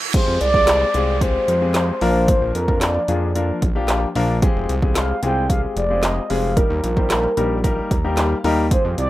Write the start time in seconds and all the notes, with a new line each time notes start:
Already playing: reverse cymbal
0.14 G#3 C4 F4 G4 G#4 C5, kick, closed hi-hat, crash, downlifter
0.28 F2
0.41 C2 D5, closed hi-hat
0.54 G#3 C4 F4 G4 G#4, kick
0.67 snare, clap, closed hi-hat
0.94 C2 G#3 C4 F4 G4 G#4, closed hi-hat
1.21 G#3 C4 F4 G4 G#4 C5, kick, closed hi-hat
1.48 F2, closed hi-hat
1.61 G#3 C4 F4 G4 G#4
1.74 snare, clap, closed hi-hat
2.01 A#1 F3 A#3 D4 F4 A#4, open hi-hat
2.28 C5, kick, closed hi-hat
2.41 A#1
2.55 F2 A#4, closed hi-hat
2.68 F3 A#3 D4 F4 A#4, kick
2.81 D5, snare, clap, closed hi-hat
3.08 F2 F3 A#3 D4 F4 G#4, closed hi-hat
3.35 F3 A#3 D4 F4 A#4, closed hi-hat
3.62 A#1, kick, closed hi-hat
3.75 F3 A#3 D4 F4 G4
3.88 snare, clap, closed hi-hat
4.15 A#1 F3 A#3 D4 F4 A#4, open hi-hat
4.42 G#3 C4 F4 G4 G#4, kick, closed hi-hat
4.56 F1
4.69 C2, closed hi-hat
4.82 G#3 C4 F4 G4 G#4, kick
4.95 F5, snare, clap, closed hi-hat
5.22 C2 G#3 C4 F4 G4 G#4 G5, closed hi-hat
5.49 G#3 C4 F4 G4 G#4 F5, kick, closed hi-hat
5.76 F1 D5, closed hi-hat
5.90 G#3 C4 F4 G4 G#4
6.03 D#5, snare, clap, closed hi-hat
6.30 F1 G#3 C4 F4 G4 G#4 F5, open hi-hat
6.57 G3 A#3 D#4 G4 A#4, kick, closed hi-hat
6.70 D#2
6.84 A#1 A#4, closed hi-hat
6.97 G3 A#3 D#4 G4 C5, kick
7.10 snare, clap, closed hi-hat
7.37 A#1 G3 A#3 D#4 G4 A#4, closed hi-hat
7.64 G3 A#3 D#4 G4 A#4, kick, closed hi-hat
7.91 D#2 A#5, kick, closed hi-hat
8.04 G3 A#3 D#4 G4 A#4 G5
8.17 F5, snare, clap, closed hi-hat
8.44 D#2 G3 A#3 D#4 G4 A#4 D#5, open hi-hat
8.71 C3 F3 G#3 C4 F4 G#4 C5, kick, closed hi-hat
8.85 F2
8.98 C2 D5, closed hi-hat